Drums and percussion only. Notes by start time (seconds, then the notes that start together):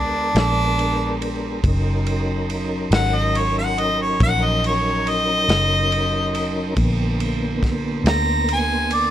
0.36 snare, ride
0.79 ride
1.22 ride
1.64 kick, ride
2.07 ride
2.50 ride
2.92 snare, ride
3.35 ride
3.78 ride
4.20 kick, ride
4.64 ride
5.07 ride
5.49 snare, ride
5.92 ride
6.35 ride
6.77 kick, ride
7.20 ride
7.63 kick, snare, ride
8.06 snare, ride
8.49 ride
8.91 ride